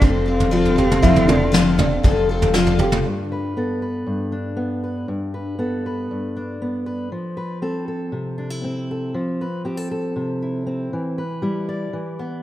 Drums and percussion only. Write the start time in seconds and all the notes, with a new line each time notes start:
0.02 kick, floor tom
0.40 floor tom
0.65 floor tom
0.78 floor tom
0.91 mid tom
1.03 kick, floor tom
1.16 floor tom
1.29 floor tom, mid tom
1.54 snare
1.79 floor tom, mid tom
2.04 kick, floor tom
2.42 floor tom
2.54 snare
2.67 floor tom
2.79 floor tom
2.92 mid tom